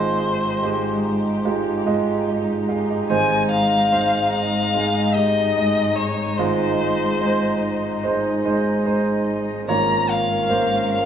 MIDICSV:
0, 0, Header, 1, 4, 480
1, 0, Start_track
1, 0, Key_signature, -4, "major"
1, 0, Tempo, 821918
1, 1814, Time_signature, 4, 2, 24, 8
1, 6456, End_track
2, 0, Start_track
2, 0, Title_t, "Violin"
2, 0, Program_c, 0, 40
2, 0, Note_on_c, 0, 72, 63
2, 840, Note_off_c, 0, 72, 0
2, 1813, Note_on_c, 0, 80, 78
2, 2037, Note_off_c, 0, 80, 0
2, 2048, Note_on_c, 0, 77, 83
2, 2508, Note_off_c, 0, 77, 0
2, 2525, Note_on_c, 0, 77, 89
2, 2997, Note_on_c, 0, 75, 74
2, 3006, Note_off_c, 0, 77, 0
2, 3479, Note_on_c, 0, 73, 67
2, 3488, Note_off_c, 0, 75, 0
2, 3724, Note_on_c, 0, 72, 69
2, 3732, Note_off_c, 0, 73, 0
2, 4689, Note_off_c, 0, 72, 0
2, 5657, Note_on_c, 0, 82, 80
2, 5893, Note_on_c, 0, 77, 75
2, 5902, Note_off_c, 0, 82, 0
2, 6366, Note_off_c, 0, 77, 0
2, 6369, Note_on_c, 0, 77, 85
2, 6456, Note_off_c, 0, 77, 0
2, 6456, End_track
3, 0, Start_track
3, 0, Title_t, "Grand piano"
3, 0, Program_c, 1, 0
3, 0, Control_c, 1, 64, 127
3, 0, Note_on_c, 1, 32, 43
3, 0, Note_on_c, 1, 44, 46
3, 0, Note_on_c, 1, 56, 66
3, 0, Note_on_c, 1, 65, 57
3, 0, Note_on_c, 1, 75, 74
3, 345, Note_off_c, 1, 56, 0
3, 347, Note_off_c, 1, 65, 0
3, 347, Note_off_c, 1, 75, 0
3, 367, Note_on_c, 1, 56, 51
3, 367, Note_on_c, 1, 65, 45
3, 369, Note_on_c, 1, 67, 60
3, 826, Note_off_c, 1, 56, 0
3, 827, Note_off_c, 1, 65, 0
3, 827, Note_off_c, 1, 67, 0
3, 847, Note_on_c, 1, 56, 54
3, 848, Note_on_c, 1, 65, 57
3, 851, Note_on_c, 1, 67, 58
3, 1078, Note_off_c, 1, 56, 0
3, 1079, Note_off_c, 1, 65, 0
3, 1080, Note_off_c, 1, 67, 0
3, 1088, Note_on_c, 1, 56, 63
3, 1088, Note_on_c, 1, 65, 60
3, 1090, Note_on_c, 1, 75, 64
3, 1319, Note_off_c, 1, 56, 0
3, 1319, Note_off_c, 1, 65, 0
3, 1320, Note_off_c, 1, 75, 0
3, 1329, Note_on_c, 1, 75, 43
3, 1333, Note_on_c, 1, 67, 35
3, 1559, Note_off_c, 1, 75, 0
3, 1562, Note_off_c, 1, 67, 0
3, 1570, Note_on_c, 1, 77, 49
3, 1572, Note_on_c, 1, 68, 42
3, 1686, Note_off_c, 1, 77, 0
3, 1687, Note_off_c, 1, 68, 0
3, 1693, Note_on_c, 1, 75, 46
3, 1695, Note_on_c, 1, 67, 42
3, 1787, Note_off_c, 1, 32, 0
3, 1787, Note_off_c, 1, 44, 0
3, 1809, Note_on_c, 1, 56, 65
3, 1810, Note_on_c, 1, 32, 47
3, 1810, Note_on_c, 1, 44, 45
3, 1810, Note_on_c, 1, 63, 62
3, 1813, Note_on_c, 1, 72, 75
3, 1823, Control_c, 1, 64, 0
3, 1910, Control_c, 1, 64, 127
3, 1921, Note_off_c, 1, 75, 0
3, 1923, Note_off_c, 1, 67, 0
3, 2267, Note_off_c, 1, 56, 0
3, 2268, Note_off_c, 1, 63, 0
3, 2270, Note_off_c, 1, 72, 0
3, 2290, Note_on_c, 1, 56, 53
3, 2292, Note_on_c, 1, 63, 51
3, 2292, Note_on_c, 1, 72, 58
3, 2748, Note_off_c, 1, 56, 0
3, 2749, Note_off_c, 1, 63, 0
3, 2749, Note_off_c, 1, 72, 0
3, 2769, Note_on_c, 1, 56, 53
3, 2772, Note_on_c, 1, 63, 45
3, 2775, Note_on_c, 1, 68, 56
3, 2999, Note_off_c, 1, 56, 0
3, 3001, Note_off_c, 1, 63, 0
3, 3002, Note_off_c, 1, 68, 0
3, 3008, Note_on_c, 1, 56, 47
3, 3010, Note_on_c, 1, 63, 45
3, 3013, Note_on_c, 1, 67, 52
3, 3239, Note_off_c, 1, 56, 0
3, 3239, Note_off_c, 1, 63, 0
3, 3242, Note_off_c, 1, 67, 0
3, 3248, Note_on_c, 1, 56, 51
3, 3248, Note_on_c, 1, 63, 47
3, 3251, Note_on_c, 1, 75, 56
3, 3707, Note_off_c, 1, 56, 0
3, 3707, Note_off_c, 1, 63, 0
3, 3708, Note_off_c, 1, 44, 0
3, 3709, Note_off_c, 1, 32, 0
3, 3709, Note_off_c, 1, 75, 0
3, 3731, Note_on_c, 1, 32, 47
3, 3731, Note_on_c, 1, 56, 70
3, 3732, Note_on_c, 1, 63, 62
3, 3733, Note_on_c, 1, 44, 47
3, 3733, Note_on_c, 1, 65, 76
3, 4188, Note_off_c, 1, 56, 0
3, 4189, Note_off_c, 1, 63, 0
3, 4190, Note_off_c, 1, 65, 0
3, 4208, Note_on_c, 1, 56, 53
3, 4210, Note_on_c, 1, 72, 60
3, 4211, Note_on_c, 1, 63, 47
3, 4667, Note_off_c, 1, 56, 0
3, 4668, Note_off_c, 1, 63, 0
3, 4668, Note_off_c, 1, 72, 0
3, 4692, Note_on_c, 1, 56, 56
3, 4694, Note_on_c, 1, 63, 49
3, 4694, Note_on_c, 1, 72, 67
3, 4921, Note_off_c, 1, 56, 0
3, 4922, Note_off_c, 1, 63, 0
3, 4922, Note_off_c, 1, 72, 0
3, 4933, Note_on_c, 1, 56, 59
3, 4934, Note_on_c, 1, 63, 50
3, 4937, Note_on_c, 1, 72, 62
3, 5160, Note_off_c, 1, 56, 0
3, 5162, Note_off_c, 1, 63, 0
3, 5164, Note_off_c, 1, 72, 0
3, 5169, Note_on_c, 1, 56, 50
3, 5172, Note_on_c, 1, 63, 45
3, 5175, Note_on_c, 1, 72, 60
3, 5627, Note_off_c, 1, 56, 0
3, 5629, Note_off_c, 1, 32, 0
3, 5629, Note_off_c, 1, 63, 0
3, 5630, Note_off_c, 1, 44, 0
3, 5630, Note_off_c, 1, 72, 0
3, 5653, Note_on_c, 1, 58, 65
3, 5655, Note_on_c, 1, 32, 44
3, 5655, Note_on_c, 1, 44, 43
3, 5656, Note_on_c, 1, 73, 72
3, 5658, Note_on_c, 1, 65, 60
3, 5660, Control_c, 1, 64, 0
3, 5761, Control_c, 1, 64, 127
3, 6110, Note_off_c, 1, 58, 0
3, 6111, Note_off_c, 1, 73, 0
3, 6112, Note_off_c, 1, 65, 0
3, 6126, Note_on_c, 1, 65, 45
3, 6128, Note_on_c, 1, 58, 56
3, 6129, Note_on_c, 1, 72, 58
3, 6456, Note_off_c, 1, 32, 0
3, 6456, Note_off_c, 1, 44, 0
3, 6456, Note_off_c, 1, 58, 0
3, 6456, Note_off_c, 1, 65, 0
3, 6456, Note_off_c, 1, 72, 0
3, 6456, End_track
4, 0, Start_track
4, 0, Title_t, "String section"
4, 0, Program_c, 2, 48
4, 0, Note_on_c, 2, 44, 59
4, 0, Note_on_c, 2, 56, 47
4, 0, Note_on_c, 2, 63, 49
4, 0, Note_on_c, 2, 67, 59
4, 1796, Note_off_c, 2, 67, 0
4, 1807, Note_on_c, 2, 75, 62
4, 5627, Note_off_c, 2, 75, 0
4, 5629, Note_off_c, 2, 56, 0
4, 5632, Note_off_c, 2, 63, 0
4, 5633, Note_off_c, 2, 44, 0
4, 5653, Note_on_c, 2, 44, 54
4, 5653, Note_on_c, 2, 61, 50
4, 5654, Note_on_c, 2, 58, 47
4, 5655, Note_on_c, 2, 70, 61
4, 6456, Note_off_c, 2, 44, 0
4, 6456, Note_off_c, 2, 58, 0
4, 6456, Note_off_c, 2, 61, 0
4, 6456, Note_off_c, 2, 70, 0
4, 6456, End_track
0, 0, End_of_file